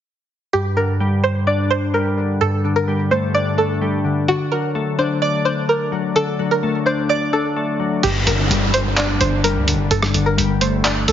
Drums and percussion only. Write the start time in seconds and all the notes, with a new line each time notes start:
8.03 closed hi-hat, crash
8.27 closed hi-hat
8.51 closed hi-hat
8.74 closed hi-hat
8.97 clap, closed hi-hat
9.21 closed hi-hat
9.44 closed hi-hat
9.68 closed hi-hat
9.91 closed hi-hat
10.02 cross-stick
10.14 closed hi-hat
10.38 closed hi-hat
10.61 closed hi-hat
10.84 clap, closed hi-hat
11.08 closed hi-hat